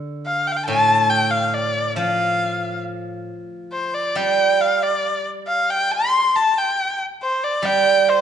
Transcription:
Already playing: D3
0.26 F5
0.47 G5
0.52 F5
0.56 G5
0.66 A2 A5
1.10 G5
1.31 F5
1.47 F5
1.54 D5
1.96 F3 F5
3.73 C5
3.94 D5
4.15 G3 G5
4.61 F5
4.83 D5
5.47 F5
5.70 G5
5.92 C6
6.36 A5
6.58 G5
7.22 C5
7.43 D5
7.62 G3 G5
8.09 C5

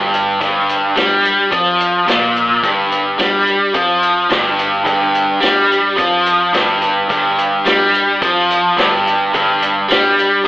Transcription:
Already playing: G1 G2
0.14 closed hi-hat
0.41 G1 G2, kick, closed hi-hat
0.69 closed hi-hat
0.96 G2 G3, snare, closed hi-hat
1.25 closed hi-hat
1.51 F2 F3, kick, closed hi-hat
1.80 closed hi-hat
2.08 A#1 A#2, snare, closed hi-hat
2.36 closed hi-hat
2.63 G1 G2, kick, closed hi-hat
2.92 closed hi-hat
3.18 G2 G3, snare, closed hi-hat
3.47 closed hi-hat
3.74 F2 F3, kick, closed hi-hat
4.03 closed hi-hat
4.30 G1 G2, snare, closed hi-hat
4.59 closed hi-hat
4.85 G1 G2, kick, closed hi-hat
5.15 closed hi-hat
5.41 G2 G3, snare, closed hi-hat
5.72 closed hi-hat
5.97 F2 F3, kick, closed hi-hat
6.26 closed hi-hat
6.53 G1 G2, snare, closed hi-hat
6.82 closed hi-hat
7.09 G1 G2, kick, closed hi-hat
7.38 closed hi-hat
7.65 G2 G3, snare, closed hi-hat
7.94 closed hi-hat
8.22 F2 F3, kick, closed hi-hat
8.51 closed hi-hat
8.77 G1 G2, snare, closed hi-hat
9.07 closed hi-hat
9.34 G1 G2, kick, closed hi-hat
9.62 closed hi-hat
9.88 G2 G3, snare, closed hi-hat
10.19 closed hi-hat

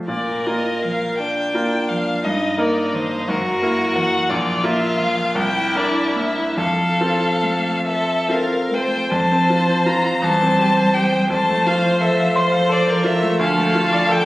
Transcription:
Already playing: F2 A3 F4 C5
0.08 A#2 A#4 D5
0.46 A#3 F4 A#4 D#5
0.83 F3 F5
1.19 D4 G5
1.55 A#3 F4 A#4
1.89 F3 F5
2.25 G2 D#4 D#5
2.58 A#3 D#4 A#4 D5
2.92 D#3 C5
3.28 F#2 F#4 A#4
3.62 A#3 E4 A#4
3.95 E3 F#5
4.30 A#1 F4 D5
4.63 A#3 F4 A#4 E5
4.99 F3 F5
5.35 C2 E4 G5
5.75 D4 E4 A#4 D5
6.16 A#3 E5
6.57 F2 A4 F5
7.00 C4 F4 A4
7.43 A3
7.86 A4 E5
8.28 C4 F4 A4 A#4 F5
8.71 A3 C5 G5
9.10 F2 F3 C5 A5
9.32 C4
9.50 F4
9.67 C5
9.86 F4 A#5
10.04 F5
10.22 E2 G3 C5 A5
10.42 C4
10.59 G4
10.77 C5
10.95 G4 G5
11.12 G5
11.30 F2 F3 C5 A5
11.49 A3
11.67 F4 F5
11.83 C5
12.01 A4 E5
12.19 F5
12.36 F3 C5 C6
12.52 F5
12.69 A4 D5
12.87 A#4 C5
13.04 F4 E5
13.23 A3
13.39 D2 F3 A4 F5
13.58 A3
13.75 F4
13.93 D5
14.09 A4 G5

